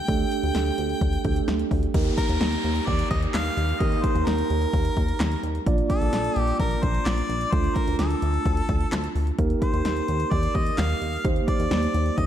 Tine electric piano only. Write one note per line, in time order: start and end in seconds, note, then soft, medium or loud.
0.08 1.22 A3 medium
0.08 1.22 D4 medium
0.08 1.22 G4 medium
0.08 1.22 A4 medium
1.25 1.94 A3 medium
1.25 1.94 D4 medium
1.25 1.93 G4 medium
1.25 1.94 A4 medium
1.94 3.77 A#3 medium
1.94 3.77 D#4 medium
1.94 3.77 G4 medium
1.94 3.77 A#4 medium
3.81 5.63 A#3 medium
3.81 5.63 D#4 medium
3.81 5.63 G4 medium
3.81 5.63 A#4 medium
5.66 7.49 A#3 medium
5.66 7.49 D4 medium
5.66 7.49 F4 medium
5.66 7.49 D5 medium
7.52 9.35 A3 medium
7.52 9.35 D4 medium
7.52 9.35 F4 medium
7.52 9.35 A4 medium
9.39 11.21 A#3 medium
9.39 11.21 D#4 medium
9.39 11.21 G4 medium
9.39 11.21 A#4 medium
11.25 12.26 A#3 medium
11.25 12.26 D#4 medium
11.25 12.26 G4 medium
11.25 12.26 C5 medium